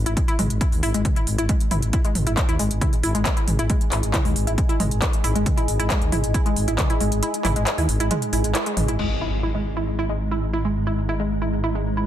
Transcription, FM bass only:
0.06 0.15 G#1 medium
0.39 0.48 G#1 medium
0.50 0.59 G#1 medium
0.72 0.81 D#2 medium
0.83 0.93 G#1 medium
0.94 1.03 G#1 medium
1.27 1.37 G#1 medium
1.38 1.47 G#1 medium
1.71 1.81 G#1 medium
1.82 1.92 G#1 medium
2.15 2.25 G#1 medium
2.27 2.36 G#1 medium
2.49 2.58 D#2 medium
2.59 2.69 G#1 loud
2.71 2.80 G#1 medium
3.03 3.13 G#1 medium
3.15 3.24 G#1 medium
3.48 3.57 G#1 medium
3.59 3.68 G#1 medium
3.92 4.01 G#1 medium
4.03 4.12 G#1 medium
4.25 4.34 D#2 medium
4.36 4.45 G#1 medium
4.47 4.56 G#1 medium
4.80 4.90 G#1 medium
4.91 5.00 G#1 medium
5.24 5.34 G#1 medium
5.35 5.45 G#1 medium
5.68 5.78 G#1 medium
5.79 5.89 G#1 medium
6.02 6.11 D#2 medium
6.12 6.22 G#1 medium
6.24 6.33 G#1 medium
6.56 6.66 G#1 medium
6.68 6.77 G#1 medium
7.00 7.10 G#1 medium
7.12 7.21 G#1 medium
7.45 7.54 G#1 loud
7.56 7.65 G#1 medium
7.78 7.87 D#2 medium
7.89 7.98 G#1 medium
8.00 8.09 G#1 medium
8.33 8.42 G#1 medium
8.44 8.53 G#1 medium
8.77 8.87 G#1 medium
8.88 8.97 G#1 medium
8.99 12.07 G#1 medium

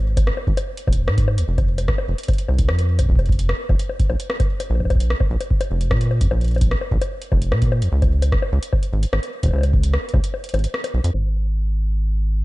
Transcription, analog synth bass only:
0.00 0.31 G#1 medium
0.47 0.54 G#1 loud
0.87 1.09 D#1 loud
1.08 1.39 G#2 medium
1.38 1.44 D#2 medium
1.48 1.92 F1 loud
2.08 2.15 F1 loud
2.49 2.70 C2 loud
2.69 3.00 F2 medium
2.99 3.05 C2 medium
3.09 3.53 F1 loud
3.69 3.76 F1 loud
4.10 4.16 A#1 medium
4.70 5.15 A#1 medium
5.30 5.37 A#1 loud
5.71 5.92 F1 medium
5.91 6.22 A#2 medium
6.21 6.27 F2 medium
6.31 6.76 A#1 loud
6.91 6.98 A#1 loud
7.32 7.53 F1 loud
7.52 7.84 A#2 medium
7.82 7.89 F2 medium
7.92 8.37 C#2 medium
8.52 8.59 C#2 loud
8.93 9.06 G#1 loud
9.13 9.19 G#1 medium
9.43 9.50 G#1 medium
9.53 9.98 C#2 loud
10.14 10.20 C#2 loud
10.54 10.67 G#1 loud
10.94 11.01 B1 loud
11.04 11.11 F2 loud
11.14 12.45 G#1 medium

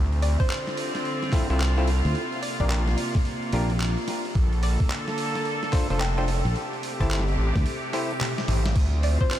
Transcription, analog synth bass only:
0.00 0.37 D2 loud
1.50 2.02 C2 loud
2.60 2.96 A#1 loud
4.35 4.77 A#1 medium
5.90 6.43 F1 loud
7.00 7.36 G1 loud
7.38 7.53 A1 loud
8.48 8.74 A1 loud
8.76 9.18 D2 loud

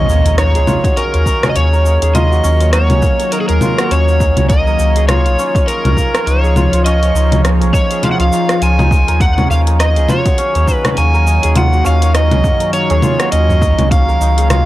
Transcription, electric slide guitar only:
0.00 0.38 D#5 loud
0.39 0.99 C#5 loud
0.97 1.46 A#4 loud
1.49 1.56 D#5 medium
1.56 2.16 C#5 medium
2.15 2.73 D#5 loud
2.73 3.34 C#5 loud
3.32 3.40 A#4 loud
3.41 3.48 G#4 medium
3.48 3.92 A#4 loud
3.92 4.46 C#5 loud
4.49 5.08 D#5 loud
5.08 5.69 C#5 medium
5.67 6.28 A#4 medium
6.26 6.85 C#5 medium
6.85 7.40 D#5 loud
7.74 8.04 C#5 medium
8.04 8.11 F5 loud
8.11 8.19 F#5 medium
8.20 8.64 F5 loud
8.62 9.23 G#5 loud
9.21 9.50 F#5 loud
9.51 9.59 F5 loud
9.80 10.10 D#5 loud
10.10 10.75 C#5 medium
10.75 11.00 B4 medium
10.98 11.57 G#5 loud
11.57 11.86 F#5 loud
11.87 12.15 F5 loud
12.15 12.73 D#5 medium
12.74 13.28 C#5 medium
13.32 13.91 D#5 medium
13.92 14.50 F5 loud
14.51 14.65 F5 medium

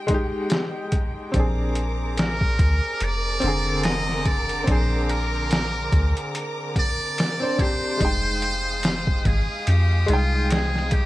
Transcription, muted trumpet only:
2.19 3.05 A#4 loud
3.03 3.85 D5 loud
3.84 4.28 D#5 loud
4.26 4.68 D5 loud
4.70 5.11 C5 loud
5.10 6.34 A#4 loud
6.79 7.62 D5 loud
7.61 9.28 C5 loud
9.27 9.70 G#4 medium
9.68 10.11 G4 medium
10.10 10.54 F4 medium
10.52 10.95 G#4 loud
10.93 11.06 G4 medium

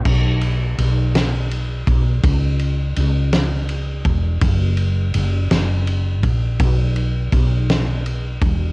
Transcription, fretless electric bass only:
0.05 0.74 B1 loud
0.78 1.83 B1 medium
1.87 2.21 B1 medium
2.23 2.92 C#2 loud
2.97 4.01 C#2 medium
4.05 4.39 E1 medium
4.41 5.10 F#1 loud
5.14 5.48 F#1 medium
5.51 6.23 F#1 medium
6.23 6.58 A#1 medium
6.60 7.28 B1 loud
7.32 8.37 B1 medium
8.41 8.72 E1 medium

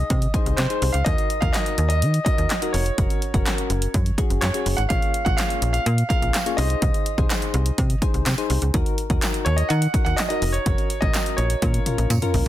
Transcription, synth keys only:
0.34 0.56 D#4 medium
0.34 0.56 G#4 medium
0.34 0.56 C5 loud
0.70 0.92 D#4 medium
0.70 0.92 G#4 medium
0.70 0.92 C5 medium
1.06 1.28 D#4 medium
1.06 1.28 F#4 medium
1.06 1.28 A#4 medium
1.42 1.93 D#4 medium
1.42 1.93 F#4 medium
1.42 1.93 A#4 medium
2.26 2.48 D#4 medium
2.26 2.48 F#4 medium
2.26 2.48 A#4 medium
2.62 2.84 D#4 medium
2.62 2.84 F#4 medium
2.62 2.84 A#4 medium
2.98 3.20 C#4 medium
2.98 3.20 F#4 medium
2.98 3.20 A#4 medium
3.34 3.85 C#4 medium
3.34 3.85 F#4 medium
3.34 3.85 A#4 loud
4.18 4.40 C#4 medium
4.18 4.40 F#4 medium
4.18 4.40 G#4 loud
4.54 4.76 C#4 medium
4.54 4.76 F#4 medium
4.54 4.76 G#4 medium
4.90 5.12 A#3 medium
4.90 5.12 C#4 medium
4.90 5.12 F4 medium
4.90 5.12 G#4 medium
4.90 5.12 C#5 medium
5.26 5.77 A#3 medium
5.26 5.77 C#4 medium
5.26 5.77 F4 medium
5.26 5.77 G#4 medium
5.26 5.77 C#5 medium
6.10 6.32 A#3 medium
6.10 6.32 C#4 medium
6.10 6.32 F4 medium
6.10 6.32 G#4 medium
6.10 6.32 A#4 medium
6.46 6.58 A#3 medium
6.46 6.58 C#4 medium
6.46 6.58 F4 medium
6.46 6.57 G#4 medium
6.46 6.58 C#5 medium
6.58 7.06 D#4 medium
6.58 7.06 G#4 medium
6.58 7.06 C5 medium
7.18 7.69 D#4 medium
7.18 7.69 G#4 medium
7.18 7.69 C5 loud
8.02 8.24 D#4 medium
8.02 8.24 G#4 medium
8.02 8.24 C5 loud
8.38 8.60 D#4 loud
8.38 8.60 G#4 medium
8.38 8.60 C5 loud
8.74 8.96 D#4 loud
8.74 8.96 F#4 medium
8.74 8.96 A#4 loud
9.10 9.61 D#4 medium
9.10 9.61 F#4 medium
9.10 9.61 A#4 medium
9.94 10.16 D#4 medium
9.94 10.16 F#4 medium
9.94 10.16 A#4 medium
10.30 10.52 D#4 medium
10.30 10.52 F#4 medium
10.30 10.52 A#4 medium
10.66 10.88 C#4 medium
10.66 10.88 F#4 medium
10.66 10.88 A#4 medium
11.02 11.53 C#4 medium
11.02 11.53 F#4 medium
11.02 11.53 A#4 medium
11.62 11.81 C#4 medium
11.62 11.81 F4 medium
11.62 11.81 A#4 medium
11.86 12.08 C#4 medium
11.86 12.08 F4 medium
11.86 12.08 A#4 medium
12.22 12.44 C#4 medium
12.22 12.44 F4 medium
12.22 12.44 A#4 loud

